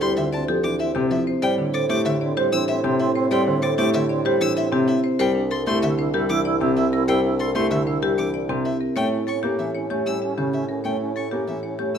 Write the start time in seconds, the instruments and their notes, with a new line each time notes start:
Already playing: bassoon D2
0.01 grand piano G3, alto flute C4, marimba E4 G4, violin C6
0.17 grand piano D3, alto flute C4, marimba F4, violin E5
0.32 alto flute C4, marimba D4 D5, violin A5
0.48 grand piano F3, alto flute C4, marimba G4 A4
0.64 grand piano E3, alto flute C4, marimba D4, violin D6
0.79 alto flute C4, marimba E4 E5, violin E5
0.95 grand piano C3, alto flute C4, marimba C4 G4
1.11 grand piano F3, alto flute C4, marimba E4, violin E5
1.27 marimba C4 C5
1.42 bassoon A2, grand piano G3, alto flute C4, marimba C5 D5, violin G5
1.58 grand piano D3, alto flute C4, marimba D4
1.74 alto flute C4, marimba A4 C5, violin D6
1.89 grand piano A3, alto flute C4, marimba E4 G4, violin D6
2.05 grand piano D3, alto flute C4, marimba G4, violin E5
2.21 alto flute C4, marimba D4 D5
2.37 grand piano G3, alto flute C4, marimba G4 C5
2.52 grand piano E3, alto flute C4, marimba D4, violin E6
2.68 alto flute C4, marimba E4 E5, violin E5
2.84 grand piano C3, alto flute C4, marimba C4 G4
2.99 alto flute C4, marimba E4, violin E5
3.15 alto flute C4, marimba C4 C5
3.31 grand piano G3, alto flute C4, marimba C5 D5, violin G5
3.47 grand piano D3, alto flute C4, marimba D4
3.62 alto flute C4, marimba A4 C5, violin D6
3.78 grand piano A3, alto flute C4, marimba E4 G4, violin D6
3.93 grand piano D3, alto flute C4, marimba G4, violin E5
4.09 alto flute C4, marimba D4 D5
4.25 grand piano G3, alto flute C4, marimba G4 C5
4.40 grand piano E3, alto flute C4, marimba D4, violin E6
4.56 alto flute C4, marimba E4 E5, violin E5
4.72 grand piano C3, marimba C4 G4, alto flute C4
4.88 alto flute C4, marimba E4, violin E5
5.04 marimba C4 C5
5.19 bassoon C2, grand piano G3, alto flute E4, marimba A#4 C5, violin G5
5.35 marimba D4, alto flute E4
5.51 alto flute E4, marimba A4 A#4, violin C6
5.66 grand piano A3, marimba E4 G4, alto flute E4, violin C6
5.82 grand piano D3, alto flute E4, marimba G4, violin E5
5.98 marimba D4 C5, alto flute E4
6.14 grand piano G3, alto flute E4, marimba G4 A#4
6.29 grand piano E3, marimba D4, alto flute E4, violin D6
6.45 alto flute E4, marimba E4 D5
6.61 grand piano C3, marimba C4 G4, alto flute E4
6.76 alto flute E4, marimba E4, violin E5
6.92 marimba C4 A#4, alto flute E4
7.08 grand piano G3, alto flute E4, marimba A#4 C5, violin G5
7.23 marimba D4, alto flute E4
7.39 alto flute E4, marimba A4 A#4, violin C6
7.55 grand piano A3, alto flute E4, marimba E4 G4, violin C6
7.71 grand piano D3, alto flute E4, marimba G4, violin E5
7.87 marimba D4 C5, alto flute E4
8.02 grand piano G3, alto flute E4, marimba G4 A#4
8.17 grand piano E3, marimba D4, alto flute E4, violin D6
8.34 alto flute E4, marimba E4 D5
8.49 grand piano C3, marimba C4 G4, alto flute E4
8.65 marimba E4, alto flute E4, violin E5
8.81 marimba C4 A#4
8.96 bassoon A2, grand piano A3, alto flute C#4, marimba C#5, violin G5
9.12 alto flute C#4, marimba E4
9.27 alto flute C#4, marimba A4 C#5, violin C#6
9.43 grand piano A#3, alto flute C#4, marimba G4
9.59 grand piano E3, alto flute C#4, marimba A4, violin E5
9.75 alto flute C#4, marimba E4 C#5
9.90 grand piano A3, alto flute C#4, marimba G4 C#5
10.06 grand piano G3, alto flute C#4, marimba E4, violin E6
10.22 alto flute C#4, marimba G4 E5
10.38 grand piano C#3, alto flute C#4, marimba C#4 G4
10.53 alto flute C#4, marimba G4, violin E5
10.69 alto flute C#4, marimba C#4 A#4
10.84 grand piano A3, alto flute C#4, marimba C#5, violin G5
11.00 alto flute C#4, marimba E4
11.16 alto flute C#4, marimba A4 C#5, violin C#6
11.31 grand piano A#3, alto flute C#4, marimba G4
11.48 grand piano E3, alto flute C#4, marimba A4, violin E5
11.63 alto flute C#4, marimba E4 C#5
11.79 grand piano A3, alto flute C#4, marimba G4 C#5
11.94 grand piano G3, alto flute C#4, marimba E4, violin E6